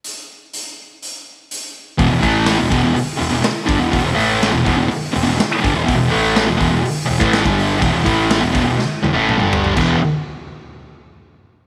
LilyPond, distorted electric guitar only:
\new Staff \with { instrumentName = "Distorted electric guitar" } { \clef bass \time 4/4 \key e \minor \tempo 4 = 123 r1 | <e, b,>16 <e, b,>16 <a, e a>8. <e, b,>16 <e, b,>16 <e, b,>16 r8 <e, b,>16 <e, b,>16 r8 <g, d>16 <e, b,>16 | <e, b,>16 <e, b,>16 <a, e a>8. <e, b,>16 <e, b,>16 <e, b,>16 r8 <e, b,>16 <e, b,>16 r8 <g, d>16 <e, b,>16 | <e, b,>16 <e, b,>16 <a, e a>8. <e, b,>16 <e, b,>16 <e, b,>16 r8 <e, b,>16 <a, e a>8 <g, d g>8. |
<e, b,>16 <e, b,>16 <a, e a>8. <e, b,>16 <e, b,>16 <e, b,>16 r8 <e, b,>16 <a, e a>8 <g, d g>8. | <e, b, e>8 r2. r8 | }